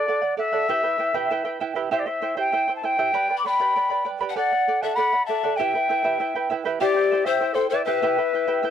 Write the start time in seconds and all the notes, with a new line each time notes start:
Already playing: D5
0.08 A4 D5 F#5
0.22 D5 F#5
0.37 A4 D5 E5 F#5
0.52 A4 D5 F#5
0.69 E4 G4 B4 E5 G5
0.83 E4 B4 G5
0.98 E4 B4 E5 G5
1.14 E4 G4 B4 E5 G5
1.30 E4 B4 E5 G5
1.45 E4 B4 G5
1.60 E4 B4 E5 G5
1.75 E4 G4 B4 E5 G5
1.91 E4 G4 C5 E5 G5
1.99 D5
2.06 E4 C5 E5 G5
2.21 E4 C5 E5 G5
2.37 E4 G4 C5 E5 G5
2.52 E4 C5 E5 G5
2.68 E4 C5 G5
2.75 A5
2.83 E4 C5 E5 G5
2.98 E4 G4 C5 E5 G5
3.13 G4 B4 D5 G5 B5
3.30 B4 D5 B5
3.37 B5 D6
3.44 B4 D5 G5 B5
3.60 G4 B4 D5 G5 B5
3.76 B4 D5 G5 B5
3.90 B4 D5 B5
4.05 B4 D5 G5 B5
4.21 G4 B4 D5 G5 B5
4.29 F#5 A5
4.36 A4 D5 F#5
4.52 D5 F#5
4.68 A4 D5 F#5
4.81 A4 D5 E5 F#5 A5
4.95 A4 D5 F#5 B5
5.13 D5 F#5
5.26 A4 D5 E5 A5
5.30 F#5
5.44 A4 D5 F#5
5.56 G4 E5 G5
5.60 E4 B4 G5
5.75 E4 B4 G5
5.89 E4 B4 E5 G5
6.04 E4 G4 B4 E5 G5
6.20 E4 B4 E5 G5
6.35 E4 B4 G5
6.50 E4 B4 E5 G5
6.65 E4 G4 B4 E5 G5
6.81 E4 G4 C5 D5 E5 G5
6.96 E4 C5 G5
7.11 E4 C5 E5 G5
7.24 E4 G4 C5 E5 G5
7.40 E4 C5 E5 G5
7.54 E4 A4 C5 G5
7.70 E4 B4 C5 D5 E5
7.74 G5
7.84 E4 G4 B4 C5 E5 G5
8.02 E4 G4 B4 E5 G5
8.18 E4 B4 G5
8.33 E4 B4 E5 G5
8.48 E4 G4 B4 E5 G5
8.63 E4 B4 E5 G5